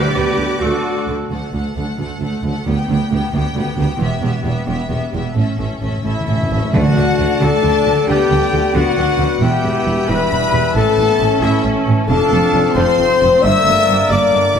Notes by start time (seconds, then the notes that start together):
Already playing: D3 G3 D4 G4 B4 D5 D6
0.14 D2 D3 B3 G4 B4
0.38 D2 D3
0.60 D2 F#3 A3 D4 F#4 A4 D5
1.07 D2 D3
1.30 D2 D3 A3 A4 F#5
1.53 D2 A3 A4 F#5
1.75 D2 F#3 A3 D4 A4 F#5
1.99 D2 A3 A4 F#5
2.20 D2 A3 A4 F#5
2.43 D2 F#3 A3 D4 A4 F#5
2.66 D2 D3 B3 G4 G5
2.87 D2 B3 G4 G5
3.11 D2 G3 B3 G4 G5
3.33 D2 B3 G4 G5
3.54 D2 B3 G4 G5
3.77 D2 G3 B3 G4 G5
3.98 E1 E2 B3 G4 E5
4.21 E1 E2 B3 G4 E5
4.43 E1 E2 G3 B3 G4 E5
4.66 E1 E2 B3 G4 E5
4.88 E1 E2 B3 G4 E5
5.10 E2 G3 B3 G4 E5
5.14 E1
5.34 A1 A2 C#4 A4 E5
5.43 A2
5.50 A2
5.58 A1 A2 C#4 A4 E5
5.66 A2
5.73 A2
5.81 A1 A2 E3 C#4 A4 E5
5.89 A2
5.97 A2
6.04 A1 A2 C#4 E4 A4 E5
6.13 A2
6.20 A2
6.27 A1 A2 C#4 A4 E5
6.36 A2
6.43 A2
6.51 A1 A2 E3 C#4 A4 E5
6.59 A2
6.73 D2 D3 A3 F#4 D5 F#5 A5
6.96 D2 D3
7.19 D2 D3
7.40 D2 D3 D4 A4 A5
7.63 D2 D3
7.86 D2 D3
8.07 D2 D3 B3 G4 B4 G5
8.31 D2 D3 G3
8.52 D2 D3 A3
8.74 D2 D3 B3 F#4 F#5
8.97 D2 D3 D4
9.18 D2 D3 C#4
9.40 E1 E2 E3 B3 G4 E5 G5
9.63 E1 E2
9.86 E1 E2
10.09 E1 E2 G3 B4 B5
10.31 E1 E2
10.53 E1 E2
10.75 A1 A2 A3 C#4 A4 A5
10.98 A1 A2 B3
11.20 A1 A2 C#4
11.42 A1 A2 E4 E5
11.65 A1 A2
11.87 A1 A2
12.07 F1 F2 D4 A4 F5 A5
12.12 F3 C4
12.31 F1 F2
12.54 F1 F2
12.74 F1 F2 C4 C5 C6
12.99 F1 F2
13.22 F1 F2
13.42 G1 G2 D3 A#3 A#4 D5 E5 E6
13.47 A#3
13.65 G1 G2 A3
13.87 G1 G2 G3
14.09 G1 G2 A#3 D5 D6
14.32 G1 G2 D4
14.54 G1 G2 E4